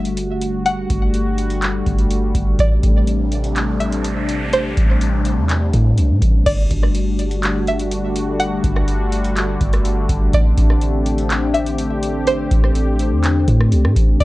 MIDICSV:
0, 0, Header, 1, 6, 480
1, 0, Start_track
1, 0, Tempo, 483871
1, 652, Time_signature, 4, 2, 24, 8
1, 14127, End_track
2, 0, Start_track
2, 0, Title_t, "Synth pluck"
2, 0, Program_c, 0, 84
2, 0, Note_on_c, 0, 76, 78
2, 164, Note_off_c, 0, 76, 0
2, 650, Note_on_c, 0, 78, 117
2, 1102, Note_off_c, 0, 78, 0
2, 2580, Note_on_c, 0, 74, 92
2, 3027, Note_off_c, 0, 74, 0
2, 3769, Note_on_c, 0, 76, 78
2, 3999, Note_off_c, 0, 76, 0
2, 4496, Note_on_c, 0, 72, 104
2, 4945, Note_off_c, 0, 72, 0
2, 6410, Note_on_c, 0, 74, 96
2, 6862, Note_off_c, 0, 74, 0
2, 7620, Note_on_c, 0, 76, 78
2, 7844, Note_off_c, 0, 76, 0
2, 8329, Note_on_c, 0, 78, 117
2, 8782, Note_off_c, 0, 78, 0
2, 10259, Note_on_c, 0, 74, 91
2, 10707, Note_off_c, 0, 74, 0
2, 11448, Note_on_c, 0, 76, 81
2, 11678, Note_off_c, 0, 76, 0
2, 12175, Note_on_c, 0, 72, 109
2, 12625, Note_off_c, 0, 72, 0
2, 14089, Note_on_c, 0, 74, 93
2, 14127, Note_off_c, 0, 74, 0
2, 14127, End_track
3, 0, Start_track
3, 0, Title_t, "Analog synth pad"
3, 0, Program_c, 1, 89
3, 0, Note_on_c, 1, 50, 74
3, 0, Note_on_c, 1, 55, 68
3, 0, Note_on_c, 1, 57, 69
3, 0, Note_on_c, 1, 66, 85
3, 2532, Note_off_c, 1, 50, 0
3, 2534, Note_off_c, 1, 66, 0
3, 2572, Note_on_c, 1, 48, 74
3, 2572, Note_on_c, 1, 62, 79
3, 6373, Note_off_c, 1, 48, 0
3, 6373, Note_off_c, 1, 55, 0
3, 6373, Note_off_c, 1, 57, 0
3, 6374, Note_off_c, 1, 62, 0
3, 6411, Note_on_c, 1, 55, 66
3, 6412, Note_on_c, 1, 50, 77
3, 6412, Note_on_c, 1, 57, 68
3, 6412, Note_on_c, 1, 62, 70
3, 6413, Note_on_c, 1, 66, 83
3, 10213, Note_off_c, 1, 55, 0
3, 10214, Note_off_c, 1, 66, 0
3, 10253, Note_on_c, 1, 67, 85
3, 10254, Note_on_c, 1, 60, 67
3, 14052, Note_off_c, 1, 50, 0
3, 14054, Note_off_c, 1, 60, 0
3, 14054, Note_off_c, 1, 67, 0
3, 14093, Note_on_c, 1, 50, 76
3, 14093, Note_on_c, 1, 66, 82
3, 14094, Note_on_c, 1, 55, 70
3, 14127, Note_off_c, 1, 50, 0
3, 14127, Note_off_c, 1, 55, 0
3, 14127, Note_off_c, 1, 57, 0
3, 14127, Note_off_c, 1, 62, 0
3, 14127, Note_off_c, 1, 66, 0
3, 14127, End_track
4, 0, Start_track
4, 0, Title_t, "808-style bass"
4, 0, Program_c, 2, 38
4, 0, Note_on_c, 2, 31, 99
4, 853, Note_off_c, 2, 31, 0
4, 892, Note_on_c, 2, 31, 97
4, 1814, Note_off_c, 2, 31, 0
4, 1853, Note_on_c, 2, 31, 107
4, 2313, Note_off_c, 2, 31, 0
4, 2329, Note_on_c, 2, 31, 96
4, 2561, Note_off_c, 2, 31, 0
4, 2571, Note_on_c, 2, 33, 111
4, 2802, Note_off_c, 2, 33, 0
4, 2812, Note_on_c, 2, 33, 96
4, 4692, Note_off_c, 2, 33, 0
4, 4733, Note_on_c, 2, 33, 102
4, 5331, Note_on_c, 2, 40, 93
4, 5346, Note_off_c, 2, 33, 0
4, 5674, Note_off_c, 2, 40, 0
4, 5692, Note_on_c, 2, 45, 110
4, 5932, Note_on_c, 2, 36, 95
4, 5946, Note_off_c, 2, 45, 0
4, 6052, Note_on_c, 2, 45, 99
4, 6067, Note_off_c, 2, 36, 0
4, 6166, Note_off_c, 2, 45, 0
4, 6170, Note_on_c, 2, 33, 99
4, 6401, Note_off_c, 2, 33, 0
4, 6412, Note_on_c, 2, 31, 111
4, 6642, Note_off_c, 2, 31, 0
4, 6652, Note_on_c, 2, 31, 103
4, 8532, Note_off_c, 2, 31, 0
4, 8572, Note_on_c, 2, 31, 105
4, 9494, Note_off_c, 2, 31, 0
4, 9533, Note_on_c, 2, 31, 108
4, 9993, Note_off_c, 2, 31, 0
4, 10009, Note_on_c, 2, 31, 96
4, 10241, Note_off_c, 2, 31, 0
4, 10252, Note_on_c, 2, 33, 118
4, 10482, Note_off_c, 2, 33, 0
4, 10493, Note_on_c, 2, 33, 98
4, 12373, Note_off_c, 2, 33, 0
4, 12413, Note_on_c, 2, 33, 103
4, 13012, Note_on_c, 2, 40, 101
4, 13027, Note_off_c, 2, 33, 0
4, 13354, Note_off_c, 2, 40, 0
4, 13373, Note_on_c, 2, 45, 106
4, 13611, Note_on_c, 2, 36, 98
4, 13626, Note_off_c, 2, 45, 0
4, 13731, Note_on_c, 2, 45, 96
4, 13746, Note_off_c, 2, 36, 0
4, 13845, Note_off_c, 2, 45, 0
4, 13850, Note_on_c, 2, 33, 98
4, 14081, Note_off_c, 2, 33, 0
4, 14092, Note_on_c, 2, 31, 117
4, 14127, Note_off_c, 2, 31, 0
4, 14127, End_track
5, 0, Start_track
5, 0, Title_t, "Noise sweep"
5, 0, Program_c, 3, 103
5, 2572, Note_on_c, 3, 60, 85
5, 6412, Note_off_c, 3, 60, 0
5, 14127, End_track
6, 0, Start_track
6, 0, Title_t, "Drums"
6, 51, Note_on_c, 9, 42, 61
6, 150, Note_off_c, 9, 42, 0
6, 170, Note_on_c, 9, 42, 84
6, 269, Note_off_c, 9, 42, 0
6, 410, Note_on_c, 9, 42, 84
6, 510, Note_off_c, 9, 42, 0
6, 651, Note_on_c, 9, 42, 69
6, 750, Note_off_c, 9, 42, 0
6, 891, Note_on_c, 9, 42, 72
6, 892, Note_on_c, 9, 36, 97
6, 990, Note_off_c, 9, 42, 0
6, 991, Note_off_c, 9, 36, 0
6, 1129, Note_on_c, 9, 42, 71
6, 1228, Note_off_c, 9, 42, 0
6, 1371, Note_on_c, 9, 42, 64
6, 1470, Note_off_c, 9, 42, 0
6, 1491, Note_on_c, 9, 42, 37
6, 1591, Note_off_c, 9, 42, 0
6, 1611, Note_on_c, 9, 42, 71
6, 1616, Note_on_c, 9, 39, 105
6, 1710, Note_off_c, 9, 42, 0
6, 1715, Note_off_c, 9, 39, 0
6, 1851, Note_on_c, 9, 42, 61
6, 1852, Note_on_c, 9, 36, 100
6, 1950, Note_off_c, 9, 42, 0
6, 1951, Note_off_c, 9, 36, 0
6, 1971, Note_on_c, 9, 42, 59
6, 2070, Note_off_c, 9, 42, 0
6, 2090, Note_on_c, 9, 42, 83
6, 2189, Note_off_c, 9, 42, 0
6, 2330, Note_on_c, 9, 36, 93
6, 2331, Note_on_c, 9, 42, 84
6, 2429, Note_off_c, 9, 36, 0
6, 2430, Note_off_c, 9, 42, 0
6, 2570, Note_on_c, 9, 42, 70
6, 2571, Note_on_c, 9, 36, 123
6, 2669, Note_off_c, 9, 42, 0
6, 2671, Note_off_c, 9, 36, 0
6, 2811, Note_on_c, 9, 42, 74
6, 2812, Note_on_c, 9, 36, 95
6, 2910, Note_off_c, 9, 42, 0
6, 2911, Note_off_c, 9, 36, 0
6, 3049, Note_on_c, 9, 42, 75
6, 3148, Note_off_c, 9, 42, 0
6, 3291, Note_on_c, 9, 42, 67
6, 3390, Note_off_c, 9, 42, 0
6, 3412, Note_on_c, 9, 42, 36
6, 3511, Note_off_c, 9, 42, 0
6, 3531, Note_on_c, 9, 42, 72
6, 3536, Note_on_c, 9, 39, 110
6, 3630, Note_off_c, 9, 42, 0
6, 3636, Note_off_c, 9, 39, 0
6, 3772, Note_on_c, 9, 42, 61
6, 3871, Note_off_c, 9, 42, 0
6, 3891, Note_on_c, 9, 42, 62
6, 3991, Note_off_c, 9, 42, 0
6, 4010, Note_on_c, 9, 42, 88
6, 4110, Note_off_c, 9, 42, 0
6, 4251, Note_on_c, 9, 42, 82
6, 4351, Note_off_c, 9, 42, 0
6, 4491, Note_on_c, 9, 42, 69
6, 4590, Note_off_c, 9, 42, 0
6, 4731, Note_on_c, 9, 42, 74
6, 4732, Note_on_c, 9, 36, 91
6, 4831, Note_off_c, 9, 36, 0
6, 4831, Note_off_c, 9, 42, 0
6, 4970, Note_on_c, 9, 42, 74
6, 5069, Note_off_c, 9, 42, 0
6, 5208, Note_on_c, 9, 42, 67
6, 5307, Note_off_c, 9, 42, 0
6, 5450, Note_on_c, 9, 42, 73
6, 5456, Note_on_c, 9, 39, 113
6, 5550, Note_off_c, 9, 42, 0
6, 5555, Note_off_c, 9, 39, 0
6, 5690, Note_on_c, 9, 42, 70
6, 5692, Note_on_c, 9, 36, 103
6, 5790, Note_off_c, 9, 42, 0
6, 5791, Note_off_c, 9, 36, 0
6, 5930, Note_on_c, 9, 42, 85
6, 6029, Note_off_c, 9, 42, 0
6, 6170, Note_on_c, 9, 36, 92
6, 6171, Note_on_c, 9, 42, 83
6, 6269, Note_off_c, 9, 36, 0
6, 6271, Note_off_c, 9, 42, 0
6, 6410, Note_on_c, 9, 42, 69
6, 6411, Note_on_c, 9, 49, 101
6, 6412, Note_on_c, 9, 36, 123
6, 6510, Note_off_c, 9, 42, 0
6, 6510, Note_off_c, 9, 49, 0
6, 6511, Note_off_c, 9, 36, 0
6, 6651, Note_on_c, 9, 42, 76
6, 6652, Note_on_c, 9, 36, 93
6, 6750, Note_off_c, 9, 42, 0
6, 6751, Note_off_c, 9, 36, 0
6, 6776, Note_on_c, 9, 37, 89
6, 6876, Note_off_c, 9, 37, 0
6, 6889, Note_on_c, 9, 42, 78
6, 6988, Note_off_c, 9, 42, 0
6, 7131, Note_on_c, 9, 42, 66
6, 7230, Note_off_c, 9, 42, 0
6, 7251, Note_on_c, 9, 42, 39
6, 7350, Note_off_c, 9, 42, 0
6, 7371, Note_on_c, 9, 42, 73
6, 7376, Note_on_c, 9, 39, 110
6, 7470, Note_off_c, 9, 42, 0
6, 7475, Note_off_c, 9, 39, 0
6, 7612, Note_on_c, 9, 42, 61
6, 7711, Note_off_c, 9, 42, 0
6, 7731, Note_on_c, 9, 42, 64
6, 7831, Note_off_c, 9, 42, 0
6, 7850, Note_on_c, 9, 42, 90
6, 7950, Note_off_c, 9, 42, 0
6, 8092, Note_on_c, 9, 42, 83
6, 8191, Note_off_c, 9, 42, 0
6, 8331, Note_on_c, 9, 42, 70
6, 8430, Note_off_c, 9, 42, 0
6, 8572, Note_on_c, 9, 36, 99
6, 8572, Note_on_c, 9, 42, 74
6, 8671, Note_off_c, 9, 42, 0
6, 8672, Note_off_c, 9, 36, 0
6, 8696, Note_on_c, 9, 37, 84
6, 8795, Note_off_c, 9, 37, 0
6, 8810, Note_on_c, 9, 42, 74
6, 8909, Note_off_c, 9, 42, 0
6, 9052, Note_on_c, 9, 42, 65
6, 9151, Note_off_c, 9, 42, 0
6, 9172, Note_on_c, 9, 42, 39
6, 9271, Note_off_c, 9, 42, 0
6, 9291, Note_on_c, 9, 42, 73
6, 9297, Note_on_c, 9, 39, 114
6, 9391, Note_off_c, 9, 42, 0
6, 9396, Note_off_c, 9, 39, 0
6, 9531, Note_on_c, 9, 42, 62
6, 9532, Note_on_c, 9, 36, 104
6, 9631, Note_off_c, 9, 42, 0
6, 9632, Note_off_c, 9, 36, 0
6, 9651, Note_on_c, 9, 42, 64
6, 9657, Note_on_c, 9, 37, 103
6, 9750, Note_off_c, 9, 42, 0
6, 9757, Note_off_c, 9, 37, 0
6, 9770, Note_on_c, 9, 42, 88
6, 9869, Note_off_c, 9, 42, 0
6, 10010, Note_on_c, 9, 36, 97
6, 10011, Note_on_c, 9, 42, 85
6, 10109, Note_off_c, 9, 36, 0
6, 10110, Note_off_c, 9, 42, 0
6, 10250, Note_on_c, 9, 42, 72
6, 10252, Note_on_c, 9, 36, 127
6, 10349, Note_off_c, 9, 42, 0
6, 10351, Note_off_c, 9, 36, 0
6, 10492, Note_on_c, 9, 42, 76
6, 10493, Note_on_c, 9, 36, 99
6, 10591, Note_off_c, 9, 42, 0
6, 10592, Note_off_c, 9, 36, 0
6, 10617, Note_on_c, 9, 37, 83
6, 10716, Note_off_c, 9, 37, 0
6, 10730, Note_on_c, 9, 42, 77
6, 10829, Note_off_c, 9, 42, 0
6, 10973, Note_on_c, 9, 42, 70
6, 11072, Note_off_c, 9, 42, 0
6, 11093, Note_on_c, 9, 42, 39
6, 11192, Note_off_c, 9, 42, 0
6, 11212, Note_on_c, 9, 42, 75
6, 11217, Note_on_c, 9, 39, 106
6, 11311, Note_off_c, 9, 42, 0
6, 11316, Note_off_c, 9, 39, 0
6, 11452, Note_on_c, 9, 42, 62
6, 11552, Note_off_c, 9, 42, 0
6, 11572, Note_on_c, 9, 42, 65
6, 11671, Note_off_c, 9, 42, 0
6, 11691, Note_on_c, 9, 42, 89
6, 11790, Note_off_c, 9, 42, 0
6, 11932, Note_on_c, 9, 42, 87
6, 12031, Note_off_c, 9, 42, 0
6, 12171, Note_on_c, 9, 42, 73
6, 12271, Note_off_c, 9, 42, 0
6, 12412, Note_on_c, 9, 42, 73
6, 12413, Note_on_c, 9, 36, 97
6, 12511, Note_off_c, 9, 42, 0
6, 12512, Note_off_c, 9, 36, 0
6, 12536, Note_on_c, 9, 37, 89
6, 12635, Note_off_c, 9, 37, 0
6, 12649, Note_on_c, 9, 42, 75
6, 12749, Note_off_c, 9, 42, 0
6, 12888, Note_on_c, 9, 42, 66
6, 12988, Note_off_c, 9, 42, 0
6, 13131, Note_on_c, 9, 42, 76
6, 13136, Note_on_c, 9, 39, 112
6, 13230, Note_off_c, 9, 42, 0
6, 13235, Note_off_c, 9, 39, 0
6, 13372, Note_on_c, 9, 42, 74
6, 13373, Note_on_c, 9, 36, 104
6, 13471, Note_off_c, 9, 42, 0
6, 13472, Note_off_c, 9, 36, 0
6, 13498, Note_on_c, 9, 37, 106
6, 13597, Note_off_c, 9, 37, 0
6, 13611, Note_on_c, 9, 42, 85
6, 13710, Note_off_c, 9, 42, 0
6, 13738, Note_on_c, 9, 37, 103
6, 13837, Note_off_c, 9, 37, 0
6, 13850, Note_on_c, 9, 36, 96
6, 13852, Note_on_c, 9, 42, 82
6, 13949, Note_off_c, 9, 36, 0
6, 13951, Note_off_c, 9, 42, 0
6, 14091, Note_on_c, 9, 42, 70
6, 14092, Note_on_c, 9, 36, 125
6, 14127, Note_off_c, 9, 36, 0
6, 14127, Note_off_c, 9, 42, 0
6, 14127, End_track
0, 0, End_of_file